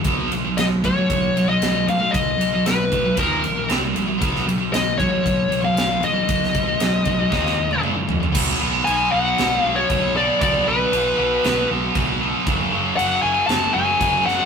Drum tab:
CC |----------------|----------------|----------------|----------------|
RD |x-x-x-x-x-x-x-x-|x-x-x-x-x-x-x-x-|x-x-x-x-x-x-x-x-|x-x-x-x---------|
SD |----o-------o---|----o-------o---|-o--o-------o---|-o--o---oo------|
T1 |----------------|----------------|----------------|-----------o----|
T2 |----------------|----------------|----------------|------------o---|
FT |----------------|----------------|----------------|--------------oo|
BD |o-----o-o-------|o-----o-o-------|o-----o-o-------|o-o---o-o-------|

CC |x---x---x---x---|x---x---x---x---|x---x---x---x---|
RD |----------------|----------------|----------------|
SD |--------o-------|--------o-------|--------o-----o-|
T1 |----------------|----------------|----------------|
T2 |----------------|----------------|----------------|
FT |----------------|----------------|----------------|
BD |o-----------o---|o-----------o---|o-----------o---|